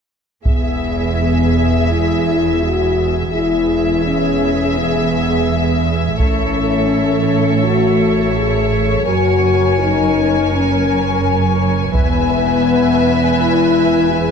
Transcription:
0.45 E1 E2 B3 G#4 E5, taiko
1.90 E4
2.61 F#4
3.32 E1 E2 E4 G#4 E5
4.05 C#4
4.77 B3
6.19 A1 A2 C#4 A4 C#5, taiko
7.63 F#4
8.36 G#4
9.06 F#1 F#2 F#4 A#4 G#5
9.78 D#4
10.52 C#4
11.94 E1 E2 B3 B4 E5 G#5, taiko
13.39 E4
14.11 G#4

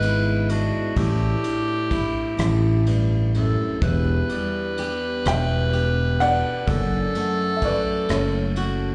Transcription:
Already playing: G#1 G#2 B3 D4 E4 G#4 B4
0.02 E4, ride
0.49 D4 F#4, ride
0.96 A1 A2 E4 G4, kick, ride
1.43 D4, ride
1.91 E4, kick, ride
2.37 A1 A2 A3, cross-stick, ride
2.86 G2, ride
3.34 F#2 A4, ride
3.82 E1 E2 B3 G4 B4, kick, ride
4.29 G3 D4, ride
4.77 G4, ride
5.25 E1 B2 B3 G5, cross-stick, ride
5.30 E5
5.73 G4, ride
6.20 D4 D5 F#5, ride
6.67 F#1 F#2 F#3 A4, kick, ride
7.15 A3, ride
7.57 E5
7.62 F#4 D5, kick, ride
7.66 B4
8.09 F#1 F#2 A3 A4 C#5, cross-stick, ride
8.56 F#4, ride

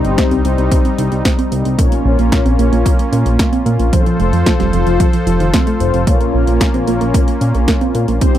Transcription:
Already playing: C3 G3 C4 D#4 G4 C5
0.05 G1 C4, closed hi-hat
0.18 C5, kick, snare, closed hi-hat
0.31 C2 C4, closed hi-hat
0.45 C2 C3 C4 D#4 G4 C5, closed hi-hat
0.58 C2 C4, closed hi-hat
0.71 C4, kick, closed hi-hat
0.85 C4, closed hi-hat
0.98 C2 D#4, closed hi-hat
1.12 C2 C4, closed hi-hat
1.25 C5, kick, snare, closed hi-hat
1.38 C4, closed hi-hat
1.52 C2 C4, closed hi-hat
1.65 C2 C4, closed hi-hat
1.78 A#2 A#3 C#4 F4 A#4 C#5, kick, closed hi-hat
1.92 A#3, closed hi-hat
2.05 A#1 C#4
2.19 A#1 A#3, closed hi-hat
2.32 A#4, kick, snare, closed hi-hat
2.45 A#1 C4, closed hi-hat
2.59 A#1 A#2 A#3 C#4 F4 A#4 C#5, closed hi-hat
2.72 A#1 A#3, closed hi-hat
2.85 A#3, kick, closed hi-hat
2.99 A#3, closed hi-hat
3.12 A#2 C#4, closed hi-hat
3.26 A#1 A#3, closed hi-hat
3.39 A#4, kick, snare, closed hi-hat
3.53 C4, closed hi-hat
3.66 A#2 A#3, closed hi-hat
3.79 A#1 A#3, closed hi-hat
3.93 F3 C4 F4 A4 C5, kick, closed hi-hat
4.06 F3, closed hi-hat
4.19 F1 A3, closed hi-hat
4.33 F2 F3, closed hi-hat
4.46 F4, kick, snare, closed hi-hat
4.59 F1 G3, snare, closed hi-hat
4.73 F1 F3 C4 F4 A4 C5, closed hi-hat
4.87 F1 F3, closed hi-hat
5.00 F3, kick, closed hi-hat
5.13 F3, closed hi-hat
5.27 F1 F3, closed hi-hat
5.40 F1 D#3, closed hi-hat
5.53 C4, kick, snare, closed hi-hat
5.67 A3, closed hi-hat
5.80 F1 F2 C4 F4 A4 C5, closed hi-hat
5.94 F1 F3, closed hi-hat
6.07 A#2 A#3 C#4 F4 A#4 C#5, kick, closed hi-hat
6.20 A#3, closed hi-hat
6.34 A#1 C#4
6.47 A#1 A#3, closed hi-hat
6.60 A#4, kick, snare, closed hi-hat
6.74 A#1 C4, closed hi-hat
6.87 A#1 A#2 A#3 C#4 F4 A#4 C#5, closed hi-hat
7.01 A#1 A#3, closed hi-hat
7.14 A#3, kick, closed hi-hat
7.28 A#3, closed hi-hat
7.41 A#2 C#4, closed hi-hat
7.55 A#1 A#3, closed hi-hat
7.68 A#4, kick, snare, closed hi-hat
7.81 C4, closed hi-hat
7.95 A#2 A#3, closed hi-hat
8.08 A#1 A#3, closed hi-hat
8.21 C3 G3 C4 D#4 G4 C5, kick, closed hi-hat
8.35 C4, closed hi-hat

